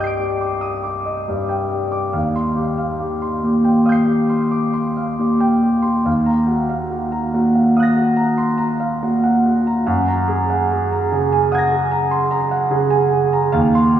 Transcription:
Already playing: C2 G2 G4 D#5 G5 D6
0.00 D#6 G6 C7
0.07 D7
0.20 G4
0.41 D6
0.61 D#6
0.84 D6
1.05 D#5
1.28 G2 G4
1.49 G5
1.71 G4
1.92 D6
2.13 D#2 F5
2.36 C6
2.56 G4
2.78 F5
3.00 G4
3.22 C6
3.43 A#2 G4
3.64 G5
3.86 F5 D#6 G6
3.92 C7
4.07 G4
4.30 C6
4.51 D6
4.74 C6
4.97 F5
5.19 A#2 G4
5.40 G5
5.62 G4
5.82 C6
6.05 D#2 F5
6.26 A#5
6.47 F#4
6.69 F5
6.90 F#4
7.12 A#5
7.34 A#2 F#4
7.55 F#5
7.76 F5 D#6 F#6
7.83 A#6
7.97 F#4
8.17 A#5
8.38 C6
8.58 A#5
8.80 F5
9.02 A#2 F#4
9.24 F#5
9.46 F#4
9.67 A#5
9.87 F#2 F#5
10.08 A#5
10.28 G#4
10.50 F#5
10.72 G#4
10.92 A#5
11.12 C#3 G#4
11.32 G#5
11.52 F#5 D#6 G#6
11.58 A#6
11.71 G#4
11.91 A#5
12.11 C6
12.31 A#5
12.51 F#5
12.70 C#3 G#4
12.90 G#5
13.12 G#4
13.33 A#5
13.52 D#2 F5
13.75 C6
13.96 G4

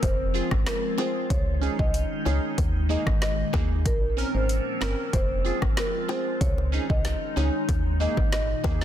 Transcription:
Already playing: F3 C4
0.03 F1 G#3 F4 C5, kick, closed hi-hat, high bongo
0.34 C4 F4 G#4
0.51 G#1, kick, cross-stick, high bongo
0.66 A#4, cross-stick, snare, closed hi-hat
0.98 C4 F4 G#4 C5, high bongo, low bongo
1.30 C#2 D#3 C#4 D#4 C#5, kick, closed hi-hat
1.61 C#4 D#4 G#4
1.79 C2 D#5, kick
1.94 closed hi-hat
2.25 C#2 C#4 D#4 G#4 C#5, low bongo
2.58 D#2 A#2, kick, closed hi-hat, high bongo
2.89 A#3 D#4 G#4 D#5
3.07 G#1, kick, cross-stick, high bongo
3.22 D#5, cross-stick, snare, closed hi-hat
3.53 D#2 A#3 D#4 G#4, kick, high bongo, low bongo
3.86 A#1 F3 A#3 C4 C#4 A#4, kick, closed hi-hat
4.17 C4 C#4 A#4
4.34 G#1 C5
4.49 closed hi-hat
4.81 G1 C4 C#4 A#4, cross-stick, snare, low bongo
5.13 F1 F3 G#3 F4 C5, kick, closed hi-hat, high bongo
5.45 C4 F4 G#4
5.62 G#1, kick, cross-stick, high bongo
5.77 A#4, cross-stick, snare, closed hi-hat
6.08 C4 F4 G#4 C5, high bongo, low bongo
6.41 C#2 D#3 C#4 D#4 C#5, kick, closed hi-hat
6.58 high bongo
6.72 C#4 D#4 G#4
6.90 C2 D#5, kick
7.05 snare, closed hi-hat, high bongo
7.36 C#2 C#4 D#4 G#4 C#5, low bongo
7.69 D#2 A#2, kick, closed hi-hat, high bongo
8.00 A#3 D#4 G#4 D#5
8.17 G#1, kick, high bongo
8.32 D#5, cross-stick, snare, closed hi-hat
8.64 D#2 A#3 D#4 G#4, kick, high bongo, low bongo
8.81 snare, high bongo

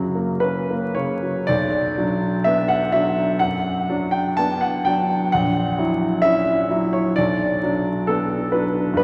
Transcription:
Already playing: F#2 C#3 F#3 F#5
0.15 A#3
0.40 C#4 B4
0.70 A#3
0.95 C#3 C#5
1.23 F#3
1.47 B1 D5
1.98 F#3 D4
2.44 B3 D4 E5
2.68 F#5
2.92 F#3 D4 E5
3.39 F#2 F#5
3.90 F#3 D4
4.11 G5
4.37 B3 D4 A5
4.61 F#5
4.85 F#3 D4 G5
5.32 A#1 F#5
5.78 F#3 E4
6.22 C#4 E4 E5
6.70 F#3 E4
6.93 C#5
7.16 B1 D5
7.63 F#3 D4
8.07 B3 D4 A4
8.52 F#3 D4 B4
8.93 G2 B4

